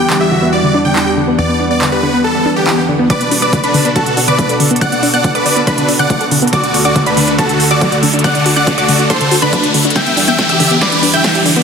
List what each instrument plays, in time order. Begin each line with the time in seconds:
Already playing: analog synth bass E2, analog synth pad E3 G3 B3 D4 F#5, grand piano G4
0.00 supersaw synth G5
0.10 synth arpeggio sound D3, clap
0.21 synth arpeggio sound G4, supersaw synth E5
0.31 synth arpeggio sound D3, grand piano F#4
0.42 synth arpeggio sound B3
0.53 supersaw synth D5
0.64 synth arpeggio sound D3
0.74 synth arpeggio sound D4, grand piano D4
0.85 synth arpeggio sound D3, supersaw synth G5
0.96 synth arpeggio sound E3, clap
1.06 synth arpeggio sound G4
1.17 synth arpeggio sound D3
1.28 synth arpeggio sound B3
1.39 analog synth bass E2, synth arpeggio sound D3, grand piano B3, supersaw synth D5
1.49 synth arpeggio sound B3
1.60 synth arpeggio sound D4
1.71 synth arpeggio sound B3, supersaw synth D5
1.81 synth arpeggio sound D3, clap
1.92 synth arpeggio sound G4, supersaw synth B4
2.03 synth arpeggio sound D3
2.13 synth arpeggio sound B3
2.24 supersaw synth A4, swell
2.35 synth arpeggio sound D3
2.46 synth arpeggio sound D4
2.56 synth arpeggio sound D3, supersaw synth G4
2.67 synth arpeggio sound E3, clap
2.78 synth arpeggio sound G4
2.88 synth arpeggio sound D3
2.99 synth arpeggio sound B3
3.10 analog synth pad B2 B3 D4 F#4 A4, synth arpeggio sound D3, supersaw synth B4 D5, synth pluck D6, kick, closed hi-hat, riser
3.21 synth arpeggio sound B3, closed hi-hat
3.31 synth arpeggio sound D4, open hi-hat
3.42 synth arpeggio sound B3, supersaw synth B4 D5, synth pluck D6, closed hi-hat
3.53 synth arpeggio sound D3, kick, closed hi-hat
3.63 supersaw synth D4 B4, synth arpeggio sound A4, synth pluck B5, closed hi-hat
3.74 synth arpeggio sound D3, open hi-hat
3.85 synth arpeggio sound B3, closed hi-hat
3.96 supersaw synth F#4 A4, synth pluck A5, kick, closed hi-hat
4.06 synth arpeggio sound D3, closed hi-hat
4.17 synth arpeggio sound D4, open hi-hat
4.28 synth arpeggio sound D3, supersaw synth B4 D5, synth pluck D6, closed hi-hat
4.39 synth arpeggio sound F#3, kick, closed hi-hat
4.49 synth arpeggio sound A4, closed hi-hat
4.60 synth arpeggio sound D3, open hi-hat
4.71 synth arpeggio sound B3, closed hi-hat
4.76 closed hi-hat
4.81 synth arpeggio sound D3, supersaw synth D5 F#5, synth pluck F#6, kick, closed hi-hat
4.92 synth arpeggio sound B3, closed hi-hat
5.03 synth arpeggio sound D4, open hi-hat
5.14 synth arpeggio sound B3, supersaw synth D5 F#5, synth pluck F#6, closed hi-hat
5.24 synth arpeggio sound D3, kick, closed hi-hat
5.35 synth arpeggio sound A4, supersaw synth B4 D5, synth pluck D6, closed hi-hat
5.46 synth arpeggio sound D3, open hi-hat
5.56 synth arpeggio sound B3, closed hi-hat
5.67 supersaw synth D4 B4, synth pluck B5, kick, closed hi-hat
5.78 synth arpeggio sound D3, closed hi-hat
5.88 synth arpeggio sound D4, open hi-hat
5.99 synth arpeggio sound D3, supersaw synth D5 F#5, synth pluck F#6, closed hi-hat
6.10 synth arpeggio sound F#3, kick, closed hi-hat
6.21 synth arpeggio sound A4, closed hi-hat
6.31 synth arpeggio sound D3, open hi-hat
6.42 synth arpeggio sound B3, closed hi-hat
6.47 closed hi-hat
6.53 analog synth pad D2 D3 A3 A4, synth arpeggio sound D3, supersaw synth F#4 D5, synth pluck D6, kick, closed hi-hat
6.64 synth arpeggio sound D4, closed hi-hat
6.74 synth arpeggio sound F#4, open hi-hat
6.85 synth arpeggio sound D4, supersaw synth F#4 D5, synth pluck D6, closed hi-hat
6.96 synth arpeggio sound D3, kick, closed hi-hat
7.06 supersaw synth D4 B4, synth arpeggio sound D5, synth pluck B5, closed hi-hat
7.17 synth arpeggio sound D3, open hi-hat
7.28 synth arpeggio sound D4, closed hi-hat
7.39 supersaw synth F#4 A4, synth pluck A5, kick, closed hi-hat
7.49 synth arpeggio sound D3, closed hi-hat
7.60 synth arpeggio sound F#4, open hi-hat
7.71 synth arpeggio sound D3, supersaw synth F#4 D5, synth pluck D6, closed hi-hat
7.81 synth arpeggio sound F#3, kick, closed hi-hat
7.92 synth arpeggio sound D5, closed hi-hat
8.03 synth arpeggio sound D3, open hi-hat
8.14 synth arpeggio sound D4, closed hi-hat
8.19 closed hi-hat
8.24 synth arpeggio sound D3, supersaw synth D5 F#5, synth pluck F#6, kick, closed hi-hat
8.35 synth arpeggio sound D4, closed hi-hat
8.46 synth arpeggio sound F#4, open hi-hat
8.56 synth arpeggio sound D4, supersaw synth D5 F#5, synth pluck F#6, closed hi-hat
8.67 synth arpeggio sound D3, kick, closed hi-hat
8.78 supersaw synth F#4 D5, synth arpeggio sound D5, synth pluck D6, closed hi-hat
8.89 synth arpeggio sound D3, open hi-hat
8.99 synth arpeggio sound D4, closed hi-hat
9.10 supersaw synth A4 C5, synth pluck C6, kick, closed hi-hat
9.21 synth arpeggio sound D3, closed hi-hat
9.31 synth arpeggio sound F#4, open hi-hat
9.42 synth arpeggio sound D3, supersaw synth D4 B4, synth pluck B5, closed hi-hat
9.53 synth arpeggio sound F#3, kick, closed hi-hat
9.64 synth arpeggio sound D5, closed hi-hat
9.74 synth arpeggio sound D3, open hi-hat
9.85 synth arpeggio sound D4, closed hi-hat
9.90 closed hi-hat
9.96 analog synth pad E2 E3 G3 D4, synth arpeggio sound D3, supersaw synth E5 G5, synth pluck G6, kick, snare
10.06 synth arpeggio sound B3, closed hi-hat
10.17 synth arpeggio sound D4, open hi-hat
10.28 synth arpeggio sound B3, supersaw synth E5 G5, synth pluck G6, closed hi-hat
10.39 synth arpeggio sound D3, kick, snare, closed hi-hat
10.49 synth arpeggio sound G4, supersaw synth G4 E5, synth pluck E6, closed hi-hat
10.60 synth arpeggio sound D3, open hi-hat
10.71 synth arpeggio sound B3, closed hi-hat
10.81 supersaw synth B4 D5, synth pluck D6, kick, snare, closed hi-hat
10.92 synth arpeggio sound D3, closed hi-hat
11.03 synth arpeggio sound D4, open hi-hat
11.13 synth arpeggio sound D3, supersaw synth E5 G5, synth pluck G6, closed hi-hat
11.24 synth arpeggio sound E3, kick, snare, closed hi-hat
11.35 synth arpeggio sound G4, closed hi-hat
11.46 synth arpeggio sound D3, open hi-hat
11.56 synth arpeggio sound B3, closed hi-hat